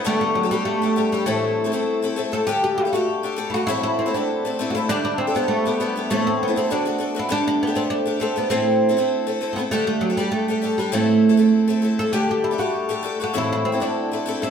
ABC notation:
X:1
M:4/4
L:1/16
Q:"Swing" 1/4=199
K:Dmix
V:1 name="Hammered dulcimer"
A,2 A,2 F,2 G,2 (3A,2 A,2 A,2 A,4 | A,8 z6 A2 | G2 G2 E2 F2 z6 F2 | E2 E2 C2 D2 z6 E2 |
D2 D2 C2 B,2 A,2 B,2 B,4 | A,2 C2 B,4 D6 z2 | z16 | z16 |
z16 | z16 | G2 G2 E2 F2 z6 F2 | E2 E2 C2 D2 z6 E2 |]
V:2 name="Twelve-string acoustic guitar"
[D,G,DGA]4- [D,G,DGA] [DGA] [G,DGA]4 [G,DGA]2 [G,DGA]2 [G,DGA]2 | [A,,E,A,CEA]4- [A,,E,A,CEA] [A,CEA] [A,CEA]4 [A,CEA]2 [A,CEA]2 [A,CEA]2 | [D,A,DGA]4- [D,A,DGA] [DGA] [A,DGA]4 [A,DGA]2 [A,DGA]2 [A,DGA]2 | [A,,E,A,CEA]4- [A,,E,A,CEA] [A,CEA] [A,CEA]4 [A,CEA]2 [A,CEA]2 [A,CEA]2 |
[D,G,DGA]4- [D,G,DGA] [DGA] [G,DGA]4 [G,DGA]2 [G,DGA]2 [G,DGA]2 | [A,,E,A,CEA]4- [A,,E,A,CEA] [A,CEA] [A,CEA]2 [D,A,DFA]2 [A,DFA]2 [A,DFA]2 [A,DFA]2 | [D,A,DGA]4- [D,A,DGA] [DGA] [A,DGA]4 [A,DGA]2 [A,DGA]2 [A,DGA]2 | [A,,E,A,CEA]4- [A,,E,A,CEA] [A,CEA] [A,CEA]4 [A,CEA]2 [A,CEA]2 [A,CEA]2 |
[D,G,DGA]4- [D,G,DGA] [DGA] [G,DGA]4 [G,DGA]2 [G,DGA]2 [G,DGA]2 | [A,,E,A,CEA]4- [A,,E,A,CEA] [A,CEA] [A,CEA]4 [A,CEA]2 [A,CEA]2 [A,CEA]2 | [D,A,DGA]4- [D,A,DGA] [DGA] [A,DGA]4 [A,DGA]2 [A,DGA]2 [A,DGA]2 | [A,,E,A,CEA]4- [A,,E,A,CEA] [A,CEA] [A,CEA]4 [A,CEA]2 [A,CEA]2 [A,CEA]2 |]
V:3 name="Oud"
A,2 A,2 F,2 G,2 A,6 G,2 | A,8 z6 A2 | G2 G2 E2 F2 z4 z3/2 E/2 F2 | E2 E2 C2 D2 z4 z3/2 F/2 E2 |
D2 D2 C2 B,2 A,2 B,2 B,4 | A,2 C2 B,2 C2 D6 E2 | D2 D2 B,2 C2 D4 C2 B,2 | C8 z4 z3/2 C/2 B,2 |
A,2 A,2 F,2 G,2 A,6 G,2 | A,8 z6 A2 | G2 G2 E2 F2 z6 F2 | E2 E2 C2 D2 z6 E2 |]